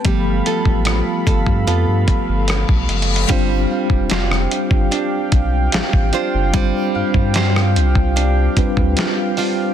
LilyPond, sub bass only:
\new Staff \with { instrumentName = "Sub bass" } { \clef bass \time 4/4 \key g \mixolydian \tempo 4 = 74 g,,8 r16 a,,8 r16 g,,16 g,16 f,16 g,16 r16 g,,8 b,,16 fis,,8 | g,,8 r16 e,,16 f,,8 r16 g,,16 r8 b,,8 a,,16 a,,16 r16 fis,,16 | g,,16 r16 g,16 g,8. c,4 d,16 d,16 r4 | }